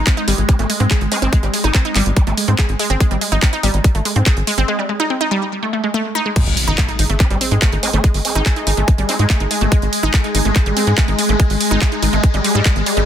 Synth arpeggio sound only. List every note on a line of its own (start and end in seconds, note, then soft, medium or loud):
0.07 0.12 C4 medium
0.17 0.22 D#4 loud
0.28 0.31 G3 loud
0.59 0.64 A3 medium
0.70 0.75 G#3 medium
0.80 0.83 C4 medium
0.91 0.96 G#4 loud
1.12 1.15 G#3 loud
1.22 1.27 C4 loud
1.33 1.36 G#3 loud
1.43 1.48 G3 medium
1.54 1.58 G#3 medium
1.64 1.69 D#4 loud
1.75 1.79 C4 medium
1.85 1.90 D#4 loud
1.96 1.98 G3 loud
2.27 2.32 A3 medium
2.37 2.42 G#3 medium
2.48 2.51 C4 medium
2.58 2.63 G#4 loud
2.79 2.82 G#3 loud
2.90 2.95 C4 loud
3.00 3.03 G#3 loud
3.11 3.16 G3 medium
3.21 3.26 G#3 medium
3.32 3.37 D#4 loud
3.42 3.47 C4 medium
3.53 3.58 D#4 loud
3.63 3.66 G3 loud
3.95 4.00 A3 medium
4.05 4.10 G#3 medium
4.16 4.19 C4 medium
4.26 4.31 G#4 loud
4.47 4.50 G#3 loud
4.58 4.63 C4 loud
4.68 4.71 G#3 loud
4.79 4.84 G3 medium
4.89 4.94 G#3 medium
5.00 5.05 D#4 loud
5.10 5.15 C4 medium
5.21 5.26 D#4 loud
5.31 5.34 G3 loud
5.63 5.68 A3 medium
5.73 5.76 A3 medium
5.84 5.89 G#3 medium
5.94 5.99 A3 loud
6.15 6.20 D#4 loud
6.26 6.29 G#3 medium
6.68 6.70 D#4 loud
6.78 6.85 A3 medium
6.89 6.93 D#4 medium
6.99 7.04 D#4 medium
7.10 7.17 A3 medium
7.31 7.35 G3 medium
7.41 7.44 C4 medium
7.51 7.56 G#3 medium
7.62 7.67 A3 medium
7.72 7.77 D#4 medium
7.83 7.88 G#3 medium
7.93 8.01 A3 medium
8.04 8.11 G#3 medium
8.35 8.38 D#4 loud
8.46 8.53 A3 medium
8.56 8.61 D#4 medium
8.67 8.72 D#4 medium
8.77 8.85 A3 medium
8.98 9.03 G3 medium
9.09 9.12 C4 medium
9.19 9.24 G#3 medium
9.30 9.35 A3 medium
9.40 9.45 D#4 medium
9.51 9.56 G#3 medium
9.61 9.69 A3 medium
9.72 9.79 G#3 medium
10.03 10.06 D#4 loud
10.14 10.21 A3 medium
10.24 10.29 D#4 medium
10.35 10.40 D#4 medium
10.45 10.53 A3 medium
10.66 10.71 G3 medium
10.77 10.80 C4 medium
10.87 10.92 G#3 medium
10.98 11.03 A3 medium
11.08 11.13 D#4 medium
11.19 11.24 G#3 medium
11.29 11.36 A3 medium
11.40 11.47 G#3 medium
11.71 11.74 D#4 loud
11.82 11.89 A3 medium
11.92 11.97 D#4 medium
12.03 12.07 D#4 medium
12.13 12.20 A3 medium
12.34 12.39 G3 medium
12.44 12.52 G3 medium
12.55 12.60 G3 loud
12.65 12.70 G#4 medium
12.86 12.89 G3 medium
12.97 13.02 G3 medium